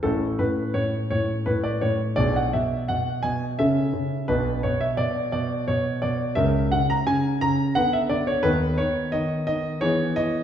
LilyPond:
<<
  \new Staff \with { instrumentName = "Grand piano" } { \time 3/4 \key a \major \tempo 4 = 86 << { a'8 b'8 cis''8 cis''8 b'16 d''16 cis''8 | d''16 fis''16 e''8 fis''8 gis''8 e''4 | b'8 cis''16 e''16 d''8 d''8 cis''8 d''8 | e''8 fis''16 ais''16 gis''8 ais''8 fis''16 e''16 d''16 cis''16 |
\key b \mixolydian b'8 cis''8 dis''8 dis''8 cis''8 dis''8 | } \\ { <cis' e'>2. | <d' gis'>2 <cis' a'>4 | d'2. | <cis' ais'>2 <b b'>4 |
<b a'>2 <b gis'>4 | } >> }
  \new Staff \with { instrumentName = "Grand piano" } { \clef bass \time 3/4 \key a \major <a,, a,>8 a,8 a,8 a,8 a,8 a,8 | <b,, b,>8 b,8 b,8 b,8 cis8 cis8 | <b,, b,>8 b,8 b,8 b,8 b,8 b,8 | <cis, cis>8 cis8 cis8 cis8 d8 d8 |
\key b \mixolydian <dis, dis>8 dis8 dis8 dis8 e8 e8 | }
>>